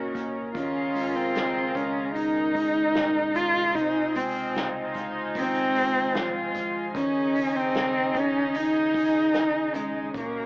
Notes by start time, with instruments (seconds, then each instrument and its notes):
Already playing: sub bass C2, tine electric piano A#2 C#3 A#3 C#4, analog synth pad F#3 A#4 D#5 A#5, cello section C#4, cello F#4
0.14 sub bass C2, tine electric piano A#3, kick, hi-hat pedal, open hi-hat
0.54 sub bass C#2, tine electric piano D#3, cello C#4, cello section F4, analog synth pad G#4 D#5 A#5, kick, hi-hat pedal, open hi-hat
0.95 tine electric piano G#3, hi-hat pedal, open hi-hat
1.15 cello C4
1.35 tine electric piano C#3, snare, hi-hat pedal, open hi-hat
1.75 sub bass C#2, tine electric piano G#3, cello C#4, kick, hi-hat pedal, open hi-hat
2.14 tine electric piano C#4, cello section D#4, cello D#4, hi-hat pedal, open hi-hat
2.55 tine electric piano G#3, kick, hi-hat pedal, open hi-hat
2.95 tine electric piano A#2, snare, hi-hat pedal, open hi-hat
3.35 sub bass C2, tine electric piano G#3, cello F4, hi-hat pedal, open hi-hat
3.75 sub bass C#2, tine electric piano C3, cello section C4, cello D#4, analog synth pad F4 C5 G#5, kick, hi-hat pedal, open hi-hat
4.15 tine electric piano G#3, cello C4, hi-hat pedal, open hi-hat
4.55 tine electric piano C#3, cello section D#4, snare, hi-hat pedal, open hi-hat
4.94 sub bass C#2, tine electric piano G#3, kick, hi-hat pedal, open hi-hat
5.35 tine electric piano D#3, cello C4, kick, hi-hat pedal, open hi-hat
5.75 tine electric piano G#3, hi-hat pedal, open hi-hat
6.15 sub bass C2, tine electric piano F3, cello section F4, snare, hi-hat pedal, open hi-hat
6.54 sub bass C2, tine electric piano G#3, kick, hi-hat pedal, open hi-hat
6.93 sub bass C#2, tine electric piano D#3, cello C#4, analog synth pad D#4 G#4 D#5, cello section D#4, kick, hi-hat pedal, open hi-hat
7.35 tine electric piano C#3, hi-hat pedal, open hi-hat
7.56 cello C4
7.74 tine electric piano C#3, snare, hi-hat pedal, open hi-hat
8.14 sub bass C#2, tine electric piano C#4, cello C#4, kick, hi-hat pedal, open hi-hat
8.54 cello D#4, hi-hat pedal, open hi-hat
8.94 kick, hi-hat pedal, open hi-hat
9.34 sub bass C2, snare, hi-hat pedal, open hi-hat
9.74 sub bass C2, cello G#3, tine electric piano C#4, hi-hat pedal, open hi-hat
10.14 sub bass C#2, tine electric piano A#2, cello A#3, cello section C#4, analog synth pad F#4 A#4 A#5, kick, hi-hat pedal, open hi-hat